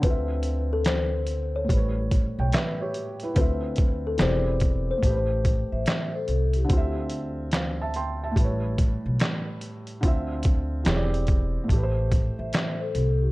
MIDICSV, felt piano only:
0, 0, Header, 1, 2, 480
1, 0, Start_track
1, 0, Tempo, 833333
1, 18, Time_signature, 4, 2, 24, 8
1, 7671, End_track
2, 0, Start_track
2, 0, Title_t, "Felt piano"
2, 0, Program_c, 0, 0
2, 0, Control_c, 0, 64, 127
2, 0, Note_on_c, 0, 50, 67
2, 10, Note_on_c, 0, 60, 64
2, 26, Control_c, 0, 64, 0
2, 34, Note_on_c, 0, 65, 63
2, 60, Note_on_c, 0, 76, 73
2, 142, Control_c, 0, 64, 127
2, 942, Note_off_c, 0, 50, 0
2, 947, Note_on_c, 0, 45, 62
2, 955, Note_off_c, 0, 60, 0
2, 967, Note_off_c, 0, 65, 0
2, 972, Note_on_c, 0, 55, 58
2, 980, Note_off_c, 0, 76, 0
2, 986, Control_c, 0, 64, 0
2, 996, Note_on_c, 0, 71, 56
2, 1020, Note_on_c, 0, 73, 71
2, 1073, Control_c, 0, 64, 127
2, 1222, Note_off_c, 0, 71, 0
2, 1235, Note_off_c, 0, 73, 0
2, 1380, Note_on_c, 0, 79, 63
2, 1384, Note_on_c, 0, 73, 54
2, 1457, Note_off_c, 0, 79, 0
2, 1459, Note_off_c, 0, 73, 0
2, 1462, Note_on_c, 0, 76, 70
2, 1467, Note_on_c, 0, 71, 62
2, 1610, Note_off_c, 0, 76, 0
2, 1612, Note_off_c, 0, 71, 0
2, 1621, Note_on_c, 0, 73, 67
2, 1625, Note_on_c, 0, 67, 56
2, 1846, Note_off_c, 0, 73, 0
2, 1848, Note_off_c, 0, 67, 0
2, 1862, Note_on_c, 0, 71, 62
2, 1864, Note_on_c, 0, 64, 55
2, 1903, Note_off_c, 0, 45, 0
2, 1916, Note_off_c, 0, 55, 0
2, 1925, Note_on_c, 0, 50, 64
2, 1938, Note_on_c, 0, 60, 67
2, 1947, Control_c, 0, 64, 0
2, 1951, Note_on_c, 0, 65, 61
2, 1964, Note_on_c, 0, 76, 75
2, 2063, Control_c, 0, 64, 127
2, 2087, Note_off_c, 0, 71, 0
2, 2088, Note_off_c, 0, 64, 0
2, 2404, Note_on_c, 0, 52, 66
2, 2406, Note_off_c, 0, 60, 0
2, 2412, Note_off_c, 0, 50, 0
2, 2415, Note_on_c, 0, 60, 59
2, 2422, Note_on_c, 0, 67, 58
2, 2424, Note_off_c, 0, 65, 0
2, 2426, Control_c, 0, 64, 0
2, 2431, Note_off_c, 0, 76, 0
2, 2433, Note_on_c, 0, 68, 56
2, 2441, Note_on_c, 0, 74, 71
2, 2541, Control_c, 0, 64, 127
2, 2867, Note_on_c, 0, 45, 62
2, 2891, Note_off_c, 0, 52, 0
2, 2891, Note_on_c, 0, 57, 57
2, 2897, Note_off_c, 0, 60, 0
2, 2900, Note_off_c, 0, 67, 0
2, 2906, Note_off_c, 0, 68, 0
2, 2906, Control_c, 0, 64, 0
2, 2909, Note_off_c, 0, 74, 0
2, 2916, Note_on_c, 0, 67, 61
2, 2940, Note_on_c, 0, 71, 61
2, 2968, Note_off_c, 0, 71, 0
2, 2977, Note_on_c, 0, 72, 65
2, 3015, Control_c, 0, 64, 127
2, 3823, Note_off_c, 0, 45, 0
2, 3827, Note_on_c, 0, 50, 83
2, 3835, Note_off_c, 0, 57, 0
2, 3848, Note_off_c, 0, 67, 0
2, 3852, Note_on_c, 0, 60, 71
2, 3866, Control_c, 0, 64, 0
2, 3875, Note_on_c, 0, 65, 78
2, 3879, Note_off_c, 0, 72, 0
2, 3900, Note_on_c, 0, 76, 94
2, 3971, Control_c, 0, 64, 127
2, 4345, Note_on_c, 0, 77, 60
2, 4348, Note_on_c, 0, 72, 52
2, 4350, Note_off_c, 0, 76, 0
2, 4491, Note_off_c, 0, 77, 0
2, 4493, Note_off_c, 0, 72, 0
2, 4502, Note_on_c, 0, 81, 70
2, 4506, Note_on_c, 0, 76, 61
2, 4577, Note_off_c, 0, 81, 0
2, 4579, Note_off_c, 0, 76, 0
2, 4586, Note_on_c, 0, 84, 66
2, 4588, Note_on_c, 0, 79, 57
2, 4731, Note_off_c, 0, 84, 0
2, 4733, Note_off_c, 0, 79, 0
2, 4744, Note_on_c, 0, 81, 62
2, 4748, Note_on_c, 0, 76, 53
2, 4783, Note_off_c, 0, 50, 0
2, 4789, Note_on_c, 0, 45, 78
2, 4796, Note_off_c, 0, 60, 0
2, 4808, Note_off_c, 0, 65, 0
2, 4813, Note_on_c, 0, 55, 67
2, 4825, Control_c, 0, 64, 0
2, 4838, Note_on_c, 0, 71, 72
2, 4862, Note_on_c, 0, 73, 77
2, 4938, Control_c, 0, 64, 127
2, 4968, Note_off_c, 0, 81, 0
2, 4970, Note_off_c, 0, 76, 0
2, 5744, Note_off_c, 0, 45, 0
2, 5756, Note_off_c, 0, 55, 0
2, 5765, Note_on_c, 0, 50, 82
2, 5769, Note_off_c, 0, 71, 0
2, 5776, Note_on_c, 0, 60, 74
2, 5781, Note_off_c, 0, 73, 0
2, 5786, Control_c, 0, 64, 0
2, 5789, Note_on_c, 0, 65, 76
2, 5802, Note_on_c, 0, 76, 88
2, 5900, Control_c, 0, 64, 127
2, 6243, Note_off_c, 0, 60, 0
2, 6243, Note_on_c, 0, 52, 70
2, 6251, Note_off_c, 0, 50, 0
2, 6252, Note_on_c, 0, 60, 65
2, 6261, Note_on_c, 0, 67, 68
2, 6264, Note_off_c, 0, 65, 0
2, 6267, Control_c, 0, 64, 0
2, 6270, Note_off_c, 0, 76, 0
2, 6271, Note_on_c, 0, 68, 71
2, 6279, Note_on_c, 0, 73, 73
2, 6317, Note_off_c, 0, 73, 0
2, 6317, Note_on_c, 0, 74, 85
2, 6355, Control_c, 0, 64, 127
2, 6703, Note_on_c, 0, 45, 70
2, 6727, Note_on_c, 0, 57, 64
2, 6731, Note_off_c, 0, 52, 0
2, 6735, Note_off_c, 0, 60, 0
2, 6739, Note_off_c, 0, 67, 0
2, 6744, Note_off_c, 0, 68, 0
2, 6746, Control_c, 0, 64, 0
2, 6754, Note_on_c, 0, 67, 64
2, 6768, Note_off_c, 0, 74, 0
2, 6777, Note_on_c, 0, 71, 67
2, 6807, Note_off_c, 0, 71, 0
2, 6816, Note_on_c, 0, 72, 84
2, 6836, Control_c, 0, 64, 127
2, 7661, Note_off_c, 0, 45, 0
2, 7671, Note_off_c, 0, 57, 0
2, 7671, Note_off_c, 0, 67, 0
2, 7671, Note_off_c, 0, 72, 0
2, 7671, End_track
0, 0, End_of_file